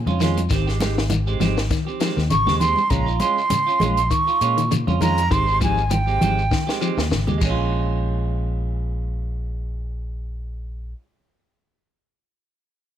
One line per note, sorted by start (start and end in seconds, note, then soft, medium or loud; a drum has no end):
0.06 0.47 F2 medium
0.06 0.14 C#3 medium
0.06 0.20 C#4 soft
0.06 0.21 F4 medium
0.06 high conga medium
0.06 shekere soft
0.20 0.37 D#3 medium
0.20 0.39 G#3 medium
0.20 0.40 C#4 medium
0.20 0.40 F4 medium
0.20 snare soft
0.20 closed hi-hat soft
0.20 low conga medium
0.20 shekere medium
0.37 closed hi-hat soft
0.37 high conga medium
0.37 shekere soft
0.50 1.37 G#1 medium
0.50 0.67 D#3 medium
0.50 0.67 C4 medium
0.50 0.66 G4 medium
0.50 muted clean electric guitar stroke medium
0.50 kick medium
0.50 snare soft
0.50 closed hi-hat medium
0.50 shekere medium
0.67 0.80 G#3 soft
0.67 0.81 G4 medium
0.67 snare soft
0.67 shekere soft
0.81 1.00 D#3 medium
0.81 1.00 G#3 medium
0.81 1.00 G4 medium
0.81 muted clean electric guitar stroke medium
0.81 snare medium
0.81 closed hi-hat medium
0.81 high conga medium
0.81 shekere medium
0.98 snare medium
0.98 shekere soft
1.10 1.27 D#3 medium
1.10 closed hi-hat medium
1.10 high conga medium
1.10 low conga medium
1.10 shekere medium
1.27 1.40 G#3 soft
1.27 1.40 C4 soft
1.27 1.40 G4 medium
1.27 shekere soft
1.40 1.68 G#1 medium
1.40 1.59 D#3 medium
1.40 1.57 F3 medium
1.40 1.60 G#3 medium
1.40 1.60 C4 medium
1.40 1.60 G4 medium
1.40 snare soft
1.40 closed hi-hat soft
1.40 high conga medium
1.40 low conga medium
1.40 shekere medium
1.57 snare medium
1.57 shekere soft
1.71 1.87 D#3 medium
1.71 kick medium
1.71 snare soft
1.71 closed hi-hat medium
1.71 shekere medium
1.87 2.00 C4 soft
1.87 2.00 G4 medium
1.87 shekere soft
2.00 2.19 D#3 medium
2.00 2.10 F3 medium
2.00 2.19 G#3 medium
2.00 2.20 C4 medium
2.00 2.20 G4 medium
2.00 snare medium
2.00 closed hi-hat soft
2.00 shekere medium
2.17 2.32 D#2 medium
2.17 2.24 D#3 medium
2.17 snare soft
2.17 shekere soft
2.30 2.45 G#1 medium
2.30 2.40 C#3 medium
2.30 2.59 C#6 medium
2.30 closed hi-hat medium
2.30 low conga medium
2.30 shekere medium
2.46 2.74 D#2 medium
2.46 2.55 C#3 medium
2.46 2.60 G#3 soft
2.46 2.60 C4 soft
2.46 2.61 G4 medium
2.46 snare soft
2.46 high conga medium
2.46 shekere soft
2.59 2.77 D#3 medium
2.59 2.80 G#3 medium
2.59 2.80 C4 medium
2.59 2.80 G4 medium
2.59 2.91 C6 medium
2.59 closed hi-hat soft
2.59 low conga medium
2.59 shekere medium
2.76 high conga medium
2.76 shekere soft
2.90 3.19 A#1 loud
2.90 3.08 C#3 medium
2.90 3.07 G#3 medium
2.90 3.07 C#4 medium
2.90 3.05 F4 medium
2.90 3.22 A#5 medium
2.90 kick medium
2.90 closed hi-hat medium
2.90 shekere medium
3.06 3.20 F4 soft
3.06 shekere soft
3.20 3.39 G#3 medium
3.20 3.40 C#4 medium
3.20 3.40 F4 medium
3.20 4.12 C6 medium
3.20 closed hi-hat soft
3.20 high conga medium
3.20 shekere medium
3.38 shekere soft
3.50 3.68 C#3 medium
3.50 closed hi-hat medium
3.50 high conga medium
3.50 low conga medium
3.50 shekere medium
3.67 3.80 C#4 soft
3.67 3.81 F4 soft
3.67 shekere soft
3.80 4.09 A#1 medium
3.80 4.00 G#3 medium
3.80 3.98 G#3 medium
3.80 4.00 C#4 medium
3.80 4.00 F4 medium
3.80 closed hi-hat soft
3.80 high conga medium
3.80 low conga medium
3.80 shekere medium
3.97 closed hi-hat soft
3.97 shekere soft
4.10 4.27 D#3 medium
4.10 4.71 C#6 medium
4.10 kick medium
4.10 closed hi-hat medium
4.10 shekere medium
4.27 4.41 F4 soft
4.27 shekere soft
4.41 4.84 A#2 medium
4.41 4.60 G#3 medium
4.41 4.60 C#4 medium
4.41 4.61 F4 medium
4.41 closed hi-hat soft
4.41 shekere medium
4.57 4.65 D#3 medium
4.57 closed hi-hat medium
4.57 shekere soft
4.71 4.80 C#3 medium
4.71 closed hi-hat medium
4.71 low conga medium
4.71 shekere medium
4.87 5.28 F2 medium
4.87 4.95 C#3 medium
4.87 5.00 C#4 soft
4.87 5.01 F4 medium
4.87 high conga medium
4.87 shekere soft
5.01 5.18 D#3 medium
5.01 5.20 G#3 medium
5.01 5.20 C#4 medium
5.01 5.20 F4 medium
5.01 5.33 A#5 loud
5.01 closed hi-hat soft
5.01 high conga medium
5.01 low conga medium
5.01 shekere medium
5.18 closed hi-hat soft
5.18 shekere soft
5.30 6.18 G#1 medium
5.30 5.47 D#3 medium
5.30 5.48 D#3 medium
5.30 5.47 G#3 medium
5.30 5.46 C4 medium
5.30 5.45 G4 medium
5.30 5.62 C6 loud
5.30 kick medium
5.30 closed hi-hat medium
5.30 shekere medium
5.47 5.60 G#3 soft
5.47 5.60 C4 soft
5.47 5.61 G4 soft
5.47 shekere soft
5.61 5.80 D#3 medium
5.61 5.78 F3 medium
5.61 5.80 G#3 medium
5.61 5.80 C4 medium
5.61 5.81 G4 medium
5.61 5.93 G#5 medium
5.61 kick medium
5.61 closed hi-hat soft
5.61 high conga medium
5.61 shekere medium
5.78 shekere soft
5.91 6.07 D#3 medium
5.91 6.82 G5 medium
5.91 closed hi-hat medium
5.91 high conga medium
5.91 low conga medium
5.91 shekere medium
6.07 6.20 G#3 soft
6.07 6.21 C4 soft
6.07 6.21 G4 soft
6.07 shekere soft
6.21 6.50 G#1 medium
6.21 6.40 D#3 soft
6.21 6.38 F3 medium
6.21 6.40 G#3 medium
6.21 6.41 C4 medium
6.21 6.41 G4 medium
6.21 closed hi-hat soft
6.21 high conga medium
6.21 low conga medium
6.21 shekere medium
6.38 shekere soft
6.51 6.68 D#3 medium
6.51 kick medium
6.51 snare soft
6.51 shekere medium
6.67 6.80 G#3 soft
6.67 6.80 C4 soft
6.67 6.81 G4 soft
6.67 snare soft
6.67 shekere soft
6.80 7.00 D#3 medium
6.80 6.91 F3 medium
6.80 7.00 G#3 medium
6.80 7.01 C4 medium
6.80 7.01 G4 medium
6.80 shekere medium
6.98 7.13 D#2 medium
6.98 7.05 D#3 medium
6.98 snare soft
6.98 shekere soft
7.11 7.27 G#1 medium
7.11 7.21 C#3 medium
7.11 snare medium
7.11 shekere medium
7.27 7.41 D#2 medium
7.27 7.35 C#3 medium
7.27 7.37 G#3 soft
7.27 7.41 G4 medium
7.27 muted clean electric guitar stroke soft
7.27 high conga medium
7.27 shekere soft
7.38 10.92 A#1 medium
7.38 10.93 G#3 medium
7.38 muted clean electric guitar stroke medium
7.38 kick medium
7.38 crash medium
7.38 low conga medium
7.38 shekere medium
7.45 10.99 C#4 medium
7.50 11.04 F4 medium